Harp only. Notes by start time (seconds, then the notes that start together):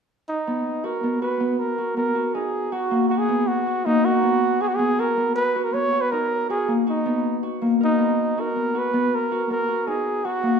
0.47 B3
0.84 F#4
1.03 B3
1.22 F#4
1.40 B3
1.78 F#4
1.97 B3
2.15 F#4
2.35 D#4
2.72 F#4
2.91 A#3
3.11 F#4
3.29 B3
3.67 F#4
3.86 A#3
4.04 A#4
4.23 B3
4.60 F#4
4.79 B3
4.99 F#4
5.17 B3
5.56 F#4
5.74 B3
5.92 F#4
6.12 D#4
6.50 F#4
6.68 A#3
6.87 F#4
7.06 B3
7.43 F#4
7.61 A#3
7.81 A#4
7.99 B3
8.37 F#4
8.56 B3
8.75 F#4
8.93 B3
9.32 F#4
9.50 B3
9.68 F#4
9.87 D#4
10.25 F#4
10.43 A#3